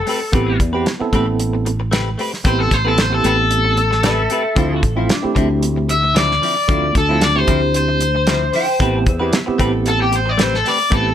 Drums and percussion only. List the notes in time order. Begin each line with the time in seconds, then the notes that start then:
0.07 open hi-hat
0.33 kick, closed hi-hat
0.60 kick, closed hi-hat
0.86 snare, closed hi-hat
1.13 kick, closed hi-hat
1.40 closed hi-hat
1.66 closed hi-hat
1.93 snare, closed hi-hat
2.19 open hi-hat
2.34 snare
2.45 kick, closed hi-hat
2.71 kick, closed hi-hat
2.98 snare, closed hi-hat
3.24 closed hi-hat
3.51 closed hi-hat
3.77 closed hi-hat
3.92 snare
4.03 snare, closed hi-hat
4.30 closed hi-hat
4.56 kick, closed hi-hat
4.83 kick, closed hi-hat
5.09 snare, closed hi-hat
5.36 kick, closed hi-hat
5.63 closed hi-hat
5.89 closed hi-hat
6.16 snare, closed hi-hat
6.31 snare
6.43 open hi-hat
6.69 kick, closed hi-hat
6.95 kick, closed hi-hat
7.21 snare, closed hi-hat
7.48 kick, closed hi-hat
7.74 closed hi-hat
8.01 closed hi-hat
8.27 snare, closed hi-hat
8.53 open hi-hat
8.80 kick, closed hi-hat
9.06 kick, closed hi-hat
9.33 snare, closed hi-hat
9.59 kick, closed hi-hat
9.86 closed hi-hat
10.12 closed hi-hat
10.39 snare, closed hi-hat
10.54 snare
10.66 open hi-hat
10.92 kick, closed hi-hat